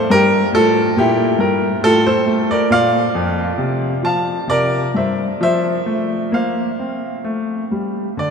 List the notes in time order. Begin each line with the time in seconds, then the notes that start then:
Already playing: A4 C5
0.10 G2 G4 A#4
0.52 A2 F4 A4
0.96 A#2 E4 G4
1.39 G2 G4 A#4
1.81 A2 A4
1.85 F4
2.06 A4 C5
2.26 A3
2.51 A#4 D5
2.70 A#2 D5 F5
3.15 F2
3.58 C3
4.03 F3 F5 A5
4.48 C3 A#4 D5
4.94 G2 C5 E5
5.41 F3 C5 E5
5.86 A3
6.32 A#3 C5 F5
6.79 C4
7.24 A3
7.71 G3
8.17 D3 D5